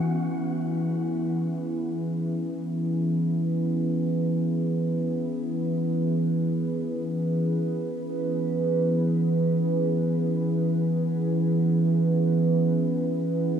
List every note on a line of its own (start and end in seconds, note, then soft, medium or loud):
0.00 13.60 E3 medium
0.00 13.60 B3 medium
0.00 13.60 C#4 medium
0.00 1.51 F#4 medium
0.04 13.60 B3 medium
0.52 13.60 G#4 medium
1.06 13.60 B4 medium